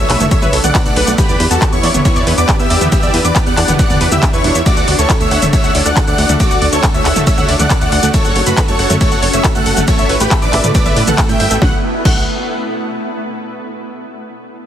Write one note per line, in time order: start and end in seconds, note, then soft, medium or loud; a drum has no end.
0.00 1.14 A3 medium
0.00 4.62 B3 medium
0.00 1.15 D4 loud
0.00 0.26 C#5 medium
0.00 0.26 E5 loud
0.00 0.26 E6 loud
0.10 0.17 B1 loud
0.10 0.14 B4 loud
0.10 clap medium
0.10 open hi-hat loud
0.20 0.27 F#1 medium
0.20 0.23 A3 loud
0.20 closed hi-hat medium
0.20 mid tom medium
0.20 shaker medium
0.31 0.36 A3 medium
0.31 0.58 C#5 medium
0.31 0.58 E5 loud
0.31 0.58 E6 medium
0.31 kick loud
0.31 closed hi-hat medium
0.31 ride medium
0.31 shaker medium
0.42 0.49 B1 medium
0.42 0.45 B4 loud
0.42 closed hi-hat soft
0.42 mid tom medium
0.42 shaker soft
0.53 0.60 B1 loud
0.53 0.57 A4 medium
0.53 open hi-hat loud
0.64 0.71 B1 loud
0.64 0.70 A3 medium
0.64 0.82 D5 medium
0.64 0.82 F#5 medium
0.64 0.82 F#6 medium
0.64 closed hi-hat medium
0.64 mid tom medium
0.64 shaker medium
0.75 0.81 F#4 medium
0.75 kick loud
0.75 clap loud
0.75 closed hi-hat medium
0.75 ride medium
0.75 shaker soft
0.86 0.93 B1 medium
0.86 0.90 A3 medium
0.86 1.13 D5 medium
0.86 1.13 F#5 loud
0.86 1.13 F#6 loud
0.86 closed hi-hat soft
0.86 shaker soft
0.96 1.04 B1 loud
0.96 1.01 B4 loud
0.96 open hi-hat loud
1.07 1.14 B1 medium
1.07 1.10 A3 loud
1.07 closed hi-hat medium
1.07 shaker medium
1.18 4.63 E3 medium
1.18 1.23 B3 medium
1.18 8.10 D4 medium
1.18 4.63 G4 medium
1.18 1.45 G4 medium
1.18 1.45 B4 loud
1.18 1.45 B5 loud
1.18 kick loud
1.18 closed hi-hat soft
1.18 ride medium
1.18 shaker medium
1.29 1.36 E2 medium
1.29 1.32 D5 loud
1.29 closed hi-hat soft
1.29 shaker soft
1.40 1.47 E2 loud
1.40 1.44 B4 medium
1.40 open hi-hat loud
1.51 1.58 E2 loud
1.51 1.57 B3 medium
1.51 1.69 F#4 medium
1.51 1.69 A4 medium
1.51 1.69 A5 medium
1.51 closed hi-hat medium
1.51 shaker medium
1.62 1.68 G4 medium
1.62 kick loud
1.62 clap loud
1.62 closed hi-hat medium
1.62 ride medium
1.62 shaker medium
1.73 1.80 E2 medium
1.73 1.77 B3 medium
1.73 2.00 E4 medium
1.73 2.00 C#5 loud
1.73 2.00 C#6 loud
1.73 closed hi-hat soft
1.73 shaker soft
1.83 1.91 E2 medium
1.83 1.88 D5 loud
1.83 open hi-hat loud
1.94 2.01 E1 medium
1.94 1.97 B3 loud
1.94 closed hi-hat medium
1.94 mid tom medium
1.94 shaker medium
2.05 2.09 B3 medium
2.05 2.32 E4 medium
2.05 2.32 C#5 loud
2.05 2.32 C#6 loud
2.05 kick loud
2.05 closed hi-hat medium
2.05 ride medium
2.05 shaker soft
2.16 2.23 E2 medium
2.16 2.19 D5 loud
2.16 closed hi-hat soft
2.16 shaker soft
2.27 2.34 E2 loud
2.27 2.31 B4 medium
2.27 open hi-hat loud
2.38 2.45 E2 loud
2.38 2.44 B3 medium
2.38 2.56 B4 medium
2.38 2.56 D5 medium
2.38 2.56 D6 medium
2.38 closed hi-hat medium
2.38 shaker medium
2.49 2.55 G4 medium
2.49 kick loud
2.49 clap loud
2.49 closed hi-hat medium
2.49 ride medium
2.49 shaker medium
2.59 2.67 E2 medium
2.59 2.64 B3 medium
2.59 2.87 G4 medium
2.59 2.87 E5 loud
2.59 2.87 E6 medium
2.59 closed hi-hat soft
2.59 shaker soft
2.70 2.78 E2 loud
2.70 2.75 D5 loud
2.70 open hi-hat loud
2.81 2.88 E2 medium
2.81 2.84 B3 loud
2.81 closed hi-hat medium
2.81 mid tom medium
2.81 shaker medium
2.92 2.97 B3 medium
2.92 3.19 G4 medium
2.92 3.19 E5 loud
2.92 3.19 E6 loud
2.92 kick loud
2.92 closed hi-hat soft
2.92 ride medium
2.92 shaker medium
3.03 3.10 E2 medium
3.03 3.06 D5 loud
3.03 closed hi-hat soft
3.03 shaker soft
3.14 3.21 E2 loud
3.14 3.18 B4 medium
3.14 open hi-hat loud
3.25 3.32 E2 medium
3.25 3.31 B3 medium
3.25 3.43 B4 medium
3.25 3.43 D5 medium
3.25 3.43 D6 medium
3.25 closed hi-hat medium
3.25 shaker medium
3.36 3.42 G4 medium
3.36 kick loud
3.36 clap loud
3.36 closed hi-hat medium
3.36 ride medium
3.36 shaker medium
3.46 3.54 E2 medium
3.46 3.51 B3 medium
3.46 3.74 D5 medium
3.46 3.74 F#5 loud
3.46 3.74 F#6 loud
3.46 closed hi-hat soft
3.46 shaker soft
3.57 3.64 E2 loud
3.57 3.62 D5 loud
3.57 clap medium
3.57 open hi-hat loud
3.68 3.75 E1 loud
3.68 3.71 B3 loud
3.68 closed hi-hat medium
3.68 mid tom medium
3.68 shaker medium
3.79 3.83 B3 medium
3.79 4.06 D5 medium
3.79 4.06 F#5 loud
3.79 4.06 F#6 loud
3.79 kick loud
3.79 closed hi-hat soft
3.79 ride medium
3.79 shaker medium
3.90 3.97 E2 medium
3.90 3.93 D5 loud
3.90 closed hi-hat soft
3.90 mid tom medium
3.90 shaker soft
4.01 4.08 E2 loud
4.01 4.05 B4 loud
4.01 open hi-hat loud
4.12 4.19 E2 loud
4.12 4.16 E4 medium
4.12 4.30 G4 medium
4.12 4.30 E5 loud
4.12 4.30 E6 medium
4.12 closed hi-hat medium
4.12 mid tom medium
4.12 shaker medium
4.23 4.25 D4 medium
4.23 kick loud
4.23 clap loud
4.23 closed hi-hat medium
4.23 ride medium
4.23 shaker medium
4.33 4.41 E2 medium
4.33 4.61 E4 medium
4.33 4.38 B4 medium
4.33 4.61 C#5 medium
4.33 4.60 C#6 loud
4.33 closed hi-hat soft
4.33 shaker soft
4.44 4.51 E1 loud
4.44 4.51 D4 medium
4.44 open hi-hat loud
4.55 4.62 E2 medium
4.55 4.62 E5 medium
4.55 closed hi-hat medium
4.55 shaker medium
4.66 8.10 D3 medium
4.66 4.70 A3 medium
4.66 9.84 F#4 medium
4.66 4.93 F#4 medium
4.66 8.10 A4 medium
4.66 4.93 D5 loud
4.66 4.93 D6 loud
4.66 kick loud
4.66 closed hi-hat medium
4.66 ride medium
4.66 shaker medium
4.77 4.84 D2 medium
4.77 4.80 F#5 loud
4.77 closed hi-hat soft
4.77 shaker soft
4.88 4.95 D2 loud
4.88 4.92 D5 medium
4.88 open hi-hat loud
4.99 5.06 D2 loud
4.99 5.05 A3 medium
4.99 5.17 A4 medium
4.99 5.17 C#5 medium
4.99 5.17 C#6 medium
4.99 closed hi-hat medium
4.99 shaker medium
5.10 5.16 A4 medium
5.10 kick loud
5.10 clap loud
5.10 closed hi-hat soft
5.10 ride medium
5.10 shaker medium
5.20 5.28 D2 medium
5.20 5.25 A3 medium
5.20 5.47 C#5 medium
5.20 5.47 E5 loud
5.20 5.47 E6 loud
5.20 closed hi-hat soft
5.20 shaker soft
5.31 5.38 D2 loud
5.31 5.36 F#5 loud
5.31 open hi-hat loud
5.42 5.49 D1 medium
5.42 5.45 A3 loud
5.42 closed hi-hat medium
5.42 mid tom medium
5.42 shaker medium
5.53 5.57 A3 medium
5.53 5.80 C#5 medium
5.53 5.80 E5 loud
5.53 5.80 E6 medium
5.53 kick loud
5.53 closed hi-hat soft
5.53 ride medium
5.53 shaker medium
5.64 5.71 D2 medium
5.64 5.67 F#5 loud
5.64 closed hi-hat soft
5.64 shaker soft
5.75 5.82 D2 loud
5.75 5.79 D5 medium
5.75 open hi-hat loud
5.86 5.93 D2 medium
5.86 5.92 A3 medium
5.86 6.04 D5 medium
5.86 6.04 F#5 loud
5.86 6.04 F#6 medium
5.86 closed hi-hat medium
5.86 shaker medium
5.97 6.03 A4 medium
5.97 kick loud
5.97 clap loud
5.97 closed hi-hat soft
5.97 ride medium
5.97 shaker medium
6.07 6.14 D2 medium
6.07 6.12 A3 medium
6.07 6.34 D5 medium
6.07 6.34 F#5 medium
6.07 6.34 F#6 loud
6.07 closed hi-hat soft
6.07 shaker soft
6.18 6.25 D2 loud
6.18 6.23 F#5 loud
6.18 open hi-hat loud
6.29 6.36 D2 medium
6.29 6.32 A3 loud
6.29 closed hi-hat medium
6.29 mid tom medium
6.29 shaker medium
6.40 6.44 A3 medium
6.40 6.67 F#4 medium
6.40 6.67 D5 loud
6.40 6.67 D6 loud
6.40 kick loud
6.40 closed hi-hat medium
6.40 ride medium
6.40 shaker medium
6.51 6.58 D2 medium
6.51 6.53 F#5 loud
6.51 closed hi-hat soft
6.51 shaker soft
6.62 6.69 D2 loud
6.62 6.66 D5 medium
6.62 open hi-hat loud
6.73 6.80 D2 medium
6.73 6.79 A3 medium
6.73 6.91 A4 medium
6.73 6.91 C#5 medium
6.73 6.91 C#6 medium
6.73 closed hi-hat medium
6.73 shaker medium
6.83 6.90 A4 medium
6.83 kick loud
6.83 clap loud
6.83 closed hi-hat medium
6.83 ride medium
6.83 shaker medium
6.94 7.01 D2 medium
6.94 6.99 A3 medium
6.94 7.21 C#5 medium
6.94 7.21 E5 loud
6.94 7.21 E6 loud
6.94 closed hi-hat soft
6.94 shaker soft
7.05 7.12 D2 loud
7.05 7.09 F#5 loud
7.05 clap medium
7.05 open hi-hat loud
7.16 7.23 D1 medium
7.16 7.19 A3 loud
7.16 closed hi-hat medium
7.16 mid tom medium
7.16 shaker medium
7.27 7.31 A3 medium
7.27 7.54 C#5 medium
7.27 7.54 E5 loud
7.27 7.54 E6 loud
7.27 kick loud
7.27 closed hi-hat medium
7.27 ride medium
7.27 shaker medium
7.38 7.45 D2 medium
7.38 7.40 F#5 loud
7.38 closed hi-hat soft
7.38 mid tom medium
7.38 shaker soft
7.49 7.56 D2 loud
7.49 7.53 D5 medium
7.49 open hi-hat loud
7.59 7.67 D2 medium
7.59 7.66 A3 medium
7.59 7.78 D5 medium
7.59 7.78 F#5 medium
7.59 7.78 F#6 medium
7.59 closed hi-hat medium
7.59 mid tom medium
7.59 shaker medium
7.70 7.77 A4 medium
7.70 kick loud
7.70 clap loud
7.70 closed hi-hat medium
7.70 ride medium
7.70 shaker medium
7.81 7.88 D2 medium
7.81 7.86 A3 medium
7.81 8.08 D5 medium
7.81 8.08 F#5 loud
7.81 8.08 F#6 medium
7.81 closed hi-hat soft
7.81 shaker soft
7.92 7.99 D2 loud
7.92 7.96 F#5 loud
7.92 open hi-hat loud
8.03 8.10 D2 medium
8.03 8.06 A3 loud
8.03 closed hi-hat medium
8.03 shaker medium
8.14 8.18 A3 medium
8.14 11.58 A3 medium
8.14 9.86 C#4 medium
8.14 8.41 A4 medium
8.14 8.41 C#5 loud
8.14 8.41 C#6 loud
8.14 kick loud
8.14 closed hi-hat medium
8.14 ride medium
8.14 shaker medium
8.25 8.32 F#1 medium
8.25 8.27 F#5 loud
8.25 closed hi-hat soft
8.25 shaker soft
8.36 8.43 F#1 loud
8.36 8.40 C#5 medium
8.36 open hi-hat loud
8.46 8.54 F#1 loud
8.46 8.53 A3 medium
8.46 8.65 F#4 medium
8.46 8.65 B4 medium
8.46 8.64 B5 medium
8.46 closed hi-hat medium
8.46 shaker medium
8.57 8.64 A4 medium
8.57 kick loud
8.57 clap loud
8.57 closed hi-hat medium
8.57 ride medium
8.57 shaker medium
8.68 8.75 F#1 medium
8.68 8.73 A3 medium
8.68 8.95 A4 medium
8.68 8.95 C#5 medium
8.68 8.95 C#6 loud
8.68 closed hi-hat soft
8.68 shaker soft
8.79 8.86 F#1 loud
8.79 8.83 F#5 loud
8.79 open hi-hat loud
8.90 8.97 F#2 medium
8.90 8.93 A3 loud
8.90 closed hi-hat medium
8.90 mid tom medium
8.90 shaker medium
9.01 9.05 A3 medium
9.01 9.28 A4 medium
9.01 9.28 C#5 loud
9.01 9.28 C#6 medium
9.01 kick loud
9.01 closed hi-hat medium
9.01 ride medium
9.01 shaker medium
9.12 9.19 F#1 medium
9.12 9.14 F#5 loud
9.12 closed hi-hat soft
9.12 shaker soft
9.23 9.30 F#1 loud
9.23 9.27 C#5 medium
9.23 open hi-hat loud
9.33 9.41 F#1 medium
9.33 9.40 A3 medium
9.33 9.51 C#5 medium
9.33 9.51 E5 medium
9.33 9.51 E6 medium
9.33 closed hi-hat medium
9.33 shaker medium
9.44 9.51 A4 medium
9.44 kick loud
9.44 clap loud
9.44 closed hi-hat medium
9.44 ride medium
9.44 shaker medium
9.55 9.62 F#1 medium
9.55 9.60 A3 medium
9.55 9.82 A4 medium
9.55 9.82 F#5 loud
9.55 9.82 F#6 loud
9.55 closed hi-hat soft
9.55 shaker soft
9.66 9.73 F#1 loud
9.66 9.70 F#5 loud
9.66 open hi-hat loud
9.77 9.84 F#1 medium
9.77 9.80 A3 loud
9.77 closed hi-hat medium
9.77 mid tom medium
9.77 shaker medium
9.88 9.92 A3 medium
9.88 11.60 B3 medium
9.88 11.60 E4 medium
9.88 10.15 A4 medium
9.88 10.15 C#5 loud
9.88 10.15 C#6 loud
9.88 kick loud
9.88 closed hi-hat medium
9.88 ride medium
9.88 shaker medium
9.99 10.06 A1 medium
9.99 10.01 E5 loud
9.99 closed hi-hat soft
9.99 shaker soft
10.09 10.17 A1 loud
10.09 10.14 B4 medium
10.09 open hi-hat loud
10.20 10.27 A1 loud
10.20 10.27 A3 medium
10.20 10.38 G4 medium
10.20 10.38 B4 medium
10.20 10.38 B5 medium
10.20 closed hi-hat medium
10.20 shaker medium
10.31 10.38 A4 medium
10.31 kick loud
10.31 clap loud
10.31 closed hi-hat medium
10.31 ride medium
10.31 shaker medium
10.42 10.49 A1 medium
10.42 10.46 A3 medium
10.42 10.69 B4 medium
10.42 10.69 D5 loud
10.42 10.69 D6 loud
10.42 closed hi-hat soft
10.42 shaker soft
10.53 10.60 A1 loud
10.53 10.57 E5 loud
10.53 clap medium
10.53 open hi-hat loud
10.64 10.71 A2 loud
10.64 10.67 A3 loud
10.64 closed hi-hat medium
10.64 mid tom medium
10.64 shaker medium
10.75 10.79 A3 medium
10.75 11.02 B4 medium
10.75 11.02 D5 loud
10.75 11.02 D6 loud
10.75 kick loud
10.75 closed hi-hat medium
10.75 ride medium
10.75 shaker soft
10.86 10.93 A1 medium
10.86 10.88 E5 loud
10.86 closed hi-hat soft
10.86 mid tom medium
10.86 shaker soft
10.96 11.04 A2 loud
10.96 11.01 B4 medium
10.96 open hi-hat loud
11.07 11.14 A1 medium
11.07 11.14 A3 medium
11.07 11.25 A4 medium
11.07 11.25 F#5 loud
11.07 11.25 F#6 medium
11.07 closed hi-hat medium
11.07 mid tom medium
11.07 shaker medium
11.18 11.25 A4 medium
11.18 kick loud
11.18 clap loud
11.18 closed hi-hat medium
11.18 ride medium
11.18 shaker medium
11.29 11.36 A1 medium
11.29 11.33 A3 medium
11.29 11.56 E5 medium
11.29 11.56 G5 loud
11.29 11.56 G6 medium
11.29 closed hi-hat soft
11.29 shaker soft
11.40 11.47 G1 loud
11.40 11.44 E5 loud
11.40 open hi-hat loud
11.51 11.58 A1 medium
11.51 11.53 A3 loud
11.51 closed hi-hat medium
11.51 shaker medium
11.62 11.74 B1 medium
11.62 11.74 A3 loud
11.62 11.74 F#5 medium
11.62 11.74 F#6 medium
11.62 kick loud
11.62 snare medium
12.05 12.25 B1 loud
12.05 12.25 A3 loud
12.05 12.21 F#5 medium
12.05 12.21 F#6 medium
12.05 kick loud
12.05 crash medium